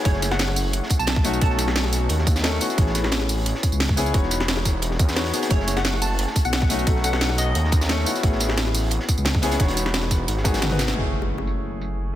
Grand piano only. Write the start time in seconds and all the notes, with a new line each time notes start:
0.03 A3 C#4 E4 G#4
1.24 A3 C#4 D#4 F#4
1.40 A3 C#4 D#4 A4
2.43 A3 C#4 D#4 A4
2.60 B3 C#4 E4 F#4
2.76 B3 C#4 E4 G#4
3.96 B3 C#4 E4 G#4
4.12 B3 D#4 F#4 C#5
5.16 B3 D#4 F#4 C#5
5.33 B3 D#4 F#4 G#4
5.49 A3 C#4 E4 G#4
6.69 A3 C#4 D#4 F#4
6.85 A3 C#4 D#4 A4
7.88 A3 C#4 D#4 A4
8.05 B3 C#4 E4 F#4
8.22 B3 C#4 E4 G#4
9.42 B3 C#4 E4 G#4
9.58 B3 D#4 F#4 C#5
10.44 B3 D#4 F#4 G#4
10.70 B3 D#4 F#4 B4
10.94 A3 C#4 E4 G#4